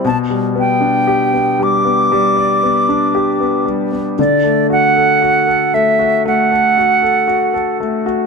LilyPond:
<<
  \new Staff \with { instrumentName = "Flute" } { \time 4/4 \key g \major \tempo 4 = 58 a''8 g''4 d'''2 r8 | d''8 fis''4 e''8 fis''4. r8 | }
  \new Staff \with { instrumentName = "Grand piano" } { \time 4/4 \key g \major b,16 g16 b16 d'16 g'16 b16 g16 b16 g16 d''16 b16 d'16 g'16 b16 g16 b16 | d16 a16 fis'16 a'16 fis'16 a'16 a16 fis'16 a16 a'16 fis'16 a'16 fis'16 a'16 a16 fis'16 | }
>>